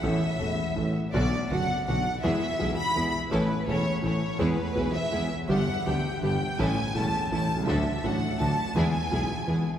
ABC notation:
X:1
M:3/4
L:1/16
Q:1/4=165
K:A
V:1 name="Violin section"
e8- e2 z2 | d4 f4 f4 | e6 b4 z2 | B4 c4 c4 |
B6 e4 z2 | f4 =g4 g4 | g4 a4 a4 | e4 f4 a4 |
g8- g2 z2 |]
V:2 name="String section"
z12 | [B,DF]2 z2 [B,DF]2 z2 [B,DF]2 z2 | [B,EG]2 z2 [B,EG]2 z2 [B,EG]2 z2 | [CEA]2 z2 [CEA]2 z2 [CEA]2 z2 |
[B,EG]2 z2 [B,EG]2 z2 [B,EG]2 z2 | [B,D=G]2 z2 [B,DG]2 z2 [B,DG]2 z2 | [CEA]2 z2 [CEA]2 z2 [CEA]2 z2 | [DFA]2 z2 [DFA]2 z2 [DFA]2 z2 |
[B,EG]2 z2 [B,EG]2 z2 [B,EG]2 z2 |]
V:3 name="Grand piano" clef=bass
[A,,,A,,E,A,CA]2 z2 [E,,,E,,E,A,CA]2 z2 [A,,,A,,E,A,CA]2 z2 | [B,,,B,,D,F,B,F]2 z2 [F,,,F,,D,F,B,F]2 z2 [B,,,B,,D,F,B,F]2 z2 | [E,,E,G,B,G]2 z2 [B,,,B,,E,G,B,G]2 z2 [E,,E,G,B,G]2 z2 | [A,,,A,,E,A,CA]2 z2 [E,,,E,,E,A,CA]2 z2 [A,,,A,,E,A,CA]2 z2 |
[E,,E,G,B,G]2 z2 [B,,,B,,E,G,B,G]2 z2 [E,,E,G,B,G]2 z2 | [=G,,,=G,,D,=G,B,=G]2 z2 [D,,D,G,B,G]2 z2 [G,,,G,,D,G,B,G]2 z2 | [A,,,A,,E,A,CA]2 z2 [E,,,E,,E,A,CA]2 z2 [A,,,A,,E,A,CA]2 z/2 B,,,/2 =C,,/2 ^C,,/2 | [D,,D,F,A,DA]2 z2 [A,,,A,,F,A,DA]2 z2 [D,,D,F,A,DA]2 z2 |
[E,,E,G,B,G]2 z2 [B,,,B,,E,G,B,G]2 z2 [E,,E,G,B,G]2 z2 |]
V:4 name="Double bass" clef=bass
A,,,2 z2 E,,,2 z2 A,,,2 z2 | B,,,2 z2 F,,,2 z2 B,,,2 z2 | E,,2 z2 B,,,2 z2 E,,2 z2 | A,,,2 z2 E,,,2 z2 A,,,2 z2 |
E,,2 z2 B,,,2 z2 E,,2 z2 | =G,,,2 z2 D,,2 z2 G,,,2 z2 | A,,,2 z2 E,,,2 z2 A,,,2 =C,,2 | D,,2 z2 A,,,2 z2 D,,2 z2 |
E,,2 z2 B,,,2 z2 E,,2 z2 |]